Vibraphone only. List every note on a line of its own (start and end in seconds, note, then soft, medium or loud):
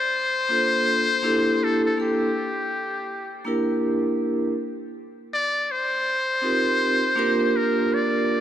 0.48 1.05 A#3 medium
0.48 1.05 D4 soft
0.48 1.06 F4 medium
0.48 1.06 A4 medium
0.48 1.07 C5 medium
1.22 1.86 A#3 medium
1.22 1.86 D4 medium
1.22 1.87 E4 medium
1.22 1.87 G4 medium
1.22 1.88 A4 medium
1.97 2.26 A#3 medium
1.97 2.27 D4 medium
1.97 2.27 E4 medium
1.97 2.27 G4 medium
1.97 2.28 A4 medium
3.45 4.51 A#3 medium
3.45 4.52 D4 medium
3.45 4.52 E4 medium
3.45 4.52 G4 medium
3.45 4.53 A#4 medium
6.42 6.98 C4 medium
6.42 6.98 D#4 medium
6.42 6.98 F4 medium
6.42 6.99 G4 medium
6.42 6.99 A#4 medium
7.16 8.37 A#3 medium
7.16 8.37 D4 medium
7.16 8.38 F4 medium
7.16 8.38 G4 medium
7.16 8.38 A#4 loud